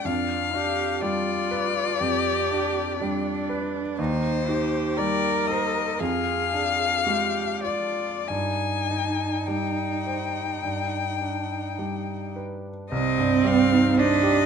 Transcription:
0.05 1.97 F2 medium
0.05 0.57 D4 medium
0.05 1.03 F5 medium
0.54 1.32 D4 medium
0.54 1.03 G4 medium
1.01 1.81 G3 soft
1.01 2.01 F4 medium
1.01 3.48 D5 medium
1.51 2.31 B4 soft
1.99 3.94 F2 medium
1.99 2.99 G4 medium
2.52 3.30 D4 soft
3.01 3.79 G3 soft
3.01 4.01 D4 medium
3.49 3.99 B4 soft
3.98 5.96 D#2 medium
3.98 4.51 D#4 medium
3.98 4.98 C5 medium
4.48 5.28 D#4 soft
4.48 4.99 G4 medium
4.97 5.80 G3 medium
4.97 6.00 A#4 medium
4.97 5.49 D5 medium
5.47 6.01 C5 soft
5.47 6.01 D#5 medium
5.99 8.25 F2 soft
5.99 7.05 G#4 medium
5.99 7.64 F5 medium
6.53 7.41 D4 soft
7.05 8.04 G#3 soft
7.05 7.66 G4 medium
7.64 8.31 F4 soft
7.64 8.30 D5 medium
7.64 8.29 D5 soft
8.28 10.60 G2 soft
8.28 12.36 D#4 soft
8.28 9.48 G#5 medium
8.90 9.82 D#4 soft
9.47 10.40 G3 soft
9.47 12.35 G5 medium
10.06 10.64 C5 soft
10.62 12.87 G2 soft
11.21 12.13 D4 soft
11.79 12.70 G3 soft
12.36 12.92 B4 soft
12.91 14.46 C2 medium
12.91 14.00 C4 medium
12.91 13.48 D#5 medium
13.18 13.62 G2 medium
13.44 13.88 G3 medium
13.44 13.99 F5 medium
13.72 14.15 D#4 medium
13.98 14.46 D4 medium
13.98 14.40 C5 medium
13.98 14.46 D#5 medium
14.23 14.46 G4 medium

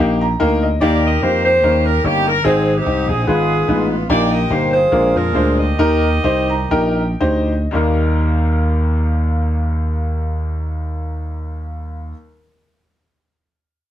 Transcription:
0.00 0.34 A#1 loud
0.00 0.24 A#3 medium
0.00 0.36 A#3 medium
0.00 0.24 D#4 medium
0.00 0.36 D#4 medium
0.00 0.24 G4 loud
0.00 0.40 G4 loud
0.21 0.39 A#5 medium
0.40 0.75 D2 loud
0.40 0.65 A#3 medium
0.40 0.65 D#4 medium
0.40 0.65 A#4 loud
0.40 0.61 G5 medium
0.63 0.80 D#5 medium
0.81 1.16 D#2 loud
0.81 1.41 D#3 medium
0.81 1.06 A#3 medium
0.81 1.06 D#4 medium
0.81 1.44 G4 medium
0.81 1.06 G4 loud
0.81 1.59 A#4 medium
0.81 1.02 D5 loud
1.05 1.22 D#5 loud
1.23 1.57 F2 loud
1.23 1.47 A#3 medium
1.23 1.48 D#4 medium
1.23 1.48 G4 medium
1.23 1.44 C5 loud
1.45 2.04 G4 medium
1.45 1.83 C5 loud
1.63 1.98 D#2 medium
1.63 2.23 D#3 medium
1.63 1.88 G3 medium
1.63 1.88 A#3 medium
1.63 1.88 C#4 medium
1.63 1.88 D#4 medium
1.63 1.88 A#4 medium
1.86 2.04 A#4 loud
2.04 2.39 G1 loud
2.04 2.29 G3 medium
2.04 2.29 A#3 medium
2.04 2.29 C#4 medium
2.04 2.29 D#4 medium
2.04 2.27 G4 loud
2.04 2.29 C#5 medium
2.27 2.45 A#4 loud
2.45 2.80 G#1 loud
2.45 3.05 G#2 medium
2.45 2.70 C4 loud
2.45 2.76 C4 medium
2.45 2.70 D#4 medium
2.45 2.76 D#4 medium
2.45 2.77 G#4 loud
2.45 2.70 G#4 loud
2.77 3.24 C4 medium
2.77 3.24 D#4 medium
2.77 3.09 G4 loud
2.86 3.05 C2 loud
2.86 3.11 C4 medium
2.86 3.11 D#4 medium
2.86 3.11 G4 medium
3.09 3.24 A#1 medium
3.09 3.27 G#4 medium
3.27 3.62 G#1 loud
3.27 3.87 G#2 medium
3.27 3.52 G#3 medium
3.27 3.52 B3 medium
3.27 4.05 B3 medium
3.27 3.52 D#4 medium
3.27 3.52 F4 medium
3.27 4.05 F4 medium
3.27 3.87 G#4 loud
3.27 3.52 B4 medium
3.68 4.03 A1 loud
3.68 3.93 G#3 medium
3.68 3.93 B3 medium
3.68 3.93 D#4 medium
3.68 3.93 F4 medium
3.68 3.93 B4 medium
4.09 4.44 A#1 loud
4.09 4.69 A#2 medium
4.09 4.34 A#3 loud
4.09 4.34 D#4 medium
4.09 4.88 G4 medium
4.09 4.34 G4 loud
4.09 4.88 A#4 medium
4.09 4.30 D5 loud
4.32 4.50 D#5 loud
4.50 4.86 G1 loud
4.50 4.76 A#3 medium
4.50 4.76 D#4 medium
4.50 4.76 G4 medium
4.50 4.73 C5 medium
4.74 5.15 F4 medium
4.74 5.55 G#4 medium
4.74 5.13 C5 loud
4.92 5.12 A#1 loud
4.92 5.55 A#2 medium
4.92 5.18 G#3 medium
4.92 5.18 A#3 medium
4.92 5.18 D4 medium
4.92 5.18 F4 medium
4.92 5.18 A#4 medium
5.16 5.32 F2 medium
5.16 5.75 D4 medium
5.16 5.75 F4 medium
5.16 5.58 A#4 loud
5.35 5.72 D2 loud
5.35 5.61 G#3 medium
5.35 5.61 A#3 medium
5.35 5.61 D4 medium
5.35 5.61 F4 medium
5.35 5.61 C5 medium
5.59 7.18 G4 medium
5.59 7.17 A#4 medium
5.59 7.21 D#5 loud
5.79 6.17 D#2 loud
5.79 6.46 D#3 medium
5.79 6.06 D#4 loud
5.79 6.06 G4 medium
5.79 6.06 A#4 loud
6.24 6.64 C2 loud
6.24 6.52 D#4 medium
6.24 6.52 G4 medium
6.24 6.52 C5 medium
6.49 6.70 A#5 medium
6.71 7.14 A#1 loud
6.71 7.01 D#4 medium
6.71 7.01 G4 medium
6.71 7.01 A#4 medium
6.71 7.18 G5 medium
7.20 7.66 D2 loud
7.20 7.52 D#4 medium
7.20 7.52 G4 medium
7.20 7.52 C5 medium
7.20 7.70 D#5 medium
7.71 12.11 D#2 medium
7.71 12.12 D#2 loud
7.71 12.09 G3 medium
7.71 12.10 A#3 medium
7.71 12.12 D#4 medium
7.75 12.13 A#4 medium

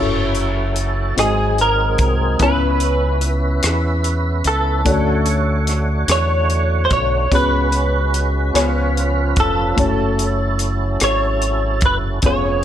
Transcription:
0.00 1.13 F#1 medium
0.00 1.17 F#3 medium
0.00 1.16 C#4 soft
0.00 1.17 C#4 soft
0.00 1.17 E4 soft
0.00 1.16 F#4 soft
0.00 1.17 A4 medium
0.00 1.20 A4 soft
0.00 1.19 C#5 medium
0.00 1.17 E5 medium
0.35 closed hi-hat soft
0.76 closed hi-hat soft
1.16 1.95 G#1 medium
1.16 2.36 G#2 soft
1.16 2.41 F#3 medium
1.16 2.40 C4 soft
1.16 2.41 C4 soft
1.16 2.40 D#4 soft
1.16 2.38 D#4 soft
1.16 2.40 F#4 soft
1.16 2.40 G#4 soft
1.16 2.41 G#4 medium
1.16 1.60 G#4 medium
1.16 2.41 D#5 medium
1.16 cross-stick medium
1.16 closed hi-hat medium
1.58 2.42 A#4 medium
1.58 closed hi-hat soft
1.98 2.37 C2 medium
1.98 kick medium
1.98 closed hi-hat soft
2.39 3.59 C#2 medium
2.39 3.60 C#3 soft
2.39 4.82 B3 soft
2.39 4.82 B3 medium
2.39 4.82 C#4 soft
2.39 2.46 D#4 soft
2.39 4.82 E4 soft
2.39 4.82 B4 soft
2.39 3.30 B4 medium
2.39 4.83 C#5 medium
2.39 4.83 G#5 soft
2.39 kick medium
2.39 closed hi-hat medium
2.47 4.85 E4 soft
2.80 closed hi-hat soft
3.21 closed hi-hat soft
3.63 4.41 E2 medium
3.63 cross-stick medium
3.63 closed hi-hat medium
4.04 closed hi-hat soft
4.44 4.83 C#2 medium
4.44 6.11 A4 medium
4.44 closed hi-hat soft
4.85 6.05 D2 medium
4.85 7.28 D3 soft
4.85 6.05 D3 medium
4.85 7.27 A3 medium
4.85 7.28 A3 medium
4.85 7.28 C#4 soft
4.85 7.28 D4 medium
4.85 7.28 F#4 soft
4.85 4.92 B4 soft
4.85 7.28 C#5 medium
4.85 kick medium
4.85 closed hi-hat medium
4.92 7.31 C#5 medium
5.26 closed hi-hat soft
5.67 cross-stick soft
5.67 closed hi-hat soft
6.08 6.86 E2 medium
6.08 6.85 C#5 medium
6.08 cross-stick medium
6.08 closed hi-hat medium
6.50 closed hi-hat soft
6.85 6.91 C5 medium
6.91 7.29 B1 medium
6.91 7.34 C#5 medium
6.91 kick medium
6.91 closed hi-hat soft
7.31 8.51 C#2 medium
7.31 8.51 C#3 soft
7.31 8.55 G#3 soft
7.31 8.53 B3 medium
7.31 8.53 C#4 medium
7.31 8.54 C#4 soft
7.31 8.55 F#4 soft
7.31 8.55 G#4 soft
7.31 8.54 B4 medium
7.31 9.40 B4 medium
7.31 8.54 C#5 medium
7.31 kick medium
7.31 closed hi-hat medium
7.72 closed hi-hat soft
8.14 closed hi-hat soft
8.54 9.32 C#2 medium
8.54 9.74 C#3 medium
8.54 9.78 F3 medium
8.54 9.77 B3 medium
8.54 9.75 C#4 medium
8.54 9.77 C#4 medium
8.54 9.78 F4 medium
8.54 9.78 B4 medium
8.54 9.78 C#5 medium
8.54 9.78 G#5 medium
8.54 cross-stick medium
8.54 closed hi-hat medium
8.97 closed hi-hat soft
9.36 9.74 F1 medium
9.36 11.04 A4 medium
9.36 kick medium
9.36 closed hi-hat soft
9.76 10.97 F#1 medium
9.76 12.20 F#3 soft
9.76 12.19 A3 soft
9.76 12.19 C#4 soft
9.76 12.20 C#4 soft
9.76 12.19 E4 soft
9.76 12.20 E4 soft
9.76 12.20 F#4 soft
9.76 12.20 A4 medium
9.76 12.20 C#5 medium
9.76 kick medium
9.76 closed hi-hat medium
10.19 closed hi-hat soft
10.59 closed hi-hat soft
11.00 11.83 G#1 medium
11.00 11.85 C#5 medium
11.00 cross-stick medium
11.00 closed hi-hat medium
11.42 closed hi-hat soft
11.81 12.20 F#1 medium
11.81 kick medium
11.81 closed hi-hat soft
11.86 11.96 B4 medium
12.22 12.64 F1 medium
12.22 12.64 F3 medium
12.22 12.64 B3 medium
12.22 12.64 B3 soft
12.22 12.64 C#4 soft
12.22 12.64 F4 medium
12.22 12.30 G4 soft
12.22 12.64 G#4 soft
12.22 12.64 C#5 medium
12.22 kick medium
12.22 closed hi-hat medium
12.26 12.64 G#4 medium
12.26 12.64 C#5 medium

